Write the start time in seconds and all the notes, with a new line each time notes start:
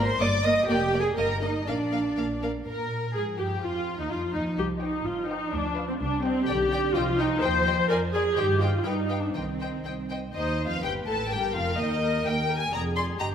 Already playing: G#1
0.04 C5 C6
0.20 G1 A#3 A#4 D5 D#5 D6
0.44 A#3 A#4 D#5 D#6
0.67 F1 A#3 G4 A#4 D5 G5
0.93 A#3 A#4 D5
1.00 G#4 G#5
1.17 G1 A#3 A#4 D#5 A#5
1.42 A#3 D#4 A#4 D#5
1.66 A#1 A#3 D4 A#4 D5 F5
1.92 A#3 A#4 F5
2.17 A#1 A#3 A#4 F5
2.43 A#3 A#4 F5
2.67 A#2 A#4
3.14 G#2 F3 G#4
3.39 G2 G4
3.62 F2 F4
3.99 D#2 D#4
4.10 F2 F4
4.34 D#2 D#4
4.59 C2 G4
4.82 D#4 C5 D#5 G5
5.06 G1 F4
5.29 D#4 C5 D#5 G5
5.53 D2 D4
5.76 B4 D5 F5
5.89 C4
6.01 C2 G3 D4
6.24 C4 C5 D#5 G5
6.48 B1 D3 G4 D5 G5
6.72 D5 G5
6.95 C2 F3 F4 C5 D#5 G5
7.19 D#4 C5 D#5 G5
7.42 D#2 C5 D#5 G5
7.66 C5 D#5 G5
7.90 F2 A#4 D5 G#5
8.13 G#4 D5 G#5
8.37 G2 D#3 G4 C5 D#5 G5
8.60 F4 C5 D#5 G5
8.85 G2 G3 D#4 B4 F5 G5
9.09 B4 F5 G5
9.23 D4
9.34 C2 D#3 C4 C5 D#5 G5
9.61 C5 D#5 G5
9.85 C2 C5 D#5 G5
10.10 C5 D#5 G5
10.34 D#2 D#4 C5 D#5
10.67 F2 F4 F5
10.83 G1 G2 G4 B4 G5
11.06 A1 A2 A4 A5
11.31 G1 G2 G4 A#4 G5
11.55 F1 F2 F4 F5
11.78 D#2 D#4 D#5
12.25 D#2 G4 A#4 G5
12.49 G4 A#4
12.57 G#5
12.73 F1 F2 G#4 D5 A#5
12.96 G#4 D5 C6
13.20 G1 G2 G4 D#5 A#5